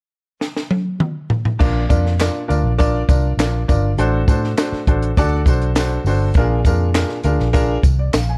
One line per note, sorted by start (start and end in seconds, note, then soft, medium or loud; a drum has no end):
0.41 snare medium
0.56 snare medium
0.71 high tom medium
1.00 mid tom medium
1.30 floor tom medium
1.45 floor tom medium
1.59 1.86 A#1 medium
1.59 2.45 A#2 medium
1.59 1.81 D4 medium
1.59 1.82 F4 medium
1.59 1.82 A#4 medium
1.59 1.81 D5 loud
1.59 kick loud
1.59 crash medium
1.59 tambourine soft
1.89 2.28 F2 medium
1.89 2.11 D4 medium
1.89 2.11 F4 medium
1.89 2.12 A#4 medium
1.89 2.11 D5 medium
1.89 kick medium
1.89 closed hi-hat medium
1.89 tambourine medium
2.06 snare soft
2.20 2.42 D4 medium
2.20 2.41 F4 medium
2.20 2.42 A#4 medium
2.20 2.41 D5 medium
2.20 snare loud
2.20 clap medium
2.20 closed hi-hat medium
2.20 tambourine medium
2.48 2.63 D2 medium
2.48 2.71 D4 medium
2.48 2.71 F4 medium
2.48 2.71 A#4 medium
2.48 2.71 D5 medium
2.48 closed hi-hat medium
2.48 tambourine soft
2.64 3.02 A#1 medium
2.78 3.01 D4 loud
2.78 3.01 F4 medium
2.78 3.00 A#4 medium
2.78 3.01 D5 loud
2.78 kick medium
2.78 closed hi-hat medium
2.78 tambourine medium
3.08 3.34 C2 medium
3.08 3.31 D4 medium
3.08 3.30 F4 medium
3.08 3.31 A#4 medium
3.08 3.30 D5 medium
3.08 kick medium
3.08 closed hi-hat medium
3.08 tambourine medium
3.37 3.63 A#1 medium
3.37 3.60 D4 medium
3.37 3.61 F4 medium
3.37 3.61 A#4 medium
3.37 3.61 D5 medium
3.37 snare loud
3.37 clap medium
3.37 closed hi-hat medium
3.37 tambourine medium
3.68 3.94 G1 medium
3.68 3.90 D4 medium
3.68 3.90 F4 medium
3.68 3.90 A#4 medium
3.68 3.90 D5 medium
3.68 kick medium
3.68 closed hi-hat medium
3.68 tambourine soft
3.98 4.24 A1 medium
3.98 4.84 A2 medium
3.98 4.20 D4 loud
3.98 4.20 F#4 medium
3.98 4.20 A4 medium
3.98 4.20 C5 loud
3.98 closed hi-hat medium
3.98 tambourine soft
4.28 4.54 A2 medium
4.28 4.50 D4 medium
4.28 4.49 F#4 medium
4.28 4.50 A4 medium
4.28 4.50 C5 medium
4.28 kick medium
4.28 closed hi-hat medium
4.28 tambourine medium
4.44 snare soft
4.58 4.80 D4 medium
4.58 4.80 F#4 medium
4.58 4.80 A4 medium
4.58 4.80 C5 medium
4.58 snare loud
4.58 clap medium
4.58 closed hi-hat medium
4.58 tambourine medium
4.72 muted fingered electric bass stroke soft
4.72 snare soft
4.87 5.13 A1 medium
4.87 5.09 D4 medium
4.87 5.09 F#4 medium
4.87 5.09 A4 medium
4.87 5.09 C5 medium
4.87 kick medium
4.87 closed hi-hat medium
5.02 closed hi-hat medium
5.17 5.43 D2 medium
5.17 5.39 D4 loud
5.17 5.39 F#4 medium
5.17 5.39 A4 loud
5.17 5.39 D5 loud
5.17 kick medium
5.17 closed hi-hat medium
5.17 tambourine medium
5.46 5.97 B1 medium
5.46 5.69 D4 medium
5.46 5.69 F#4 medium
5.46 5.69 A4 medium
5.46 5.69 C5 medium
5.46 kick medium
5.46 closed hi-hat medium
5.46 tambourine medium
5.62 closed hi-hat soft
5.75 5.98 D4 medium
5.75 5.99 F#4 medium
5.75 5.99 A4 medium
5.75 5.99 C5 medium
5.75 snare loud
5.75 clap medium
5.75 closed hi-hat medium
5.75 tambourine medium
6.04 6.31 G1 medium
6.04 6.28 D4 medium
6.04 6.28 F#4 medium
6.04 6.28 A4 medium
6.04 6.28 C5 medium
6.04 open hi-hat medium
6.04 tambourine soft
6.34 6.61 A#1 loud
6.34 7.22 A#2 medium
6.34 6.58 D4 medium
6.34 6.58 F4 medium
6.34 6.58 G#4 medium
6.34 6.58 A#4 loud
6.34 kick loud
6.34 closed hi-hat medium
6.34 tambourine soft
6.64 7.03 F2 medium
6.64 6.88 D4 medium
6.64 6.88 F4 medium
6.64 6.88 G#4 medium
6.64 6.88 A#4 medium
6.64 kick medium
6.64 closed hi-hat medium
6.64 tambourine medium
6.95 7.17 D4 medium
6.95 7.17 F4 medium
6.95 7.17 G#4 medium
6.95 7.17 A#4 medium
6.95 snare loud
6.95 clap medium
6.95 closed hi-hat medium
6.95 tambourine medium
7.09 snare soft
7.24 7.38 D2 medium
7.24 7.47 D4 medium
7.24 7.47 F4 medium
7.24 7.47 G#4 medium
7.24 7.46 A#4 medium
7.24 closed hi-hat medium
7.24 tambourine soft
7.40 7.78 A#1 medium
7.40 snare soft
7.53 7.76 D4 loud
7.53 7.76 F4 medium
7.53 7.76 G#4 loud
7.53 7.76 A#4 loud
7.53 kick medium
7.53 closed hi-hat medium
7.53 tambourine medium
7.83 8.09 C2 medium
7.83 kick loud
7.83 closed hi-hat medium
7.83 tambourine soft
7.99 8.14 D5 medium
8.13 8.38 A#1 medium
8.13 8.29 F5 medium
8.13 snare loud
8.13 clap medium
8.13 closed hi-hat medium
8.13 tambourine medium
8.29 8.38 G#5 medium